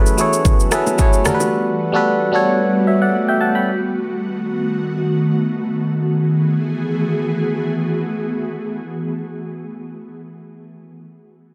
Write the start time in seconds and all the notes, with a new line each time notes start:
Already playing: E3 F#3 A3 B3 C#4 E4 F#4 G#4 A4 B4 C#5
0.06 shaker
0.17 F#3 C#4 E4 G#4 A4 C#5, shaker
0.33 shaker
0.45 kick, low conga, shaker
0.60 shaker
0.71 F#3 C#4 E4 G#4 A4 B4, cross-stick, shaker
0.87 low bongo, shaker
0.98 F#3 C#4 E4 G#4 A4 C#5, kick, high bongo, shaker
1.13 shaker
1.24 G3 D4 F#4 A4 A#4, cross-stick, low conga, shaker
1.34 B4
1.40 low bongo, shaker
1.92 G3 D4 F#4 A4 B4
2.32 G3 D4 F#4 A4 C#5
2.87 C#5 E5
3.02 D5 F#5
3.28 E5 G5
3.41 F#5 A5
3.55 G5 B5
3.66 D#3 F#4
5.81 E3 A3 B3 F#4 G#4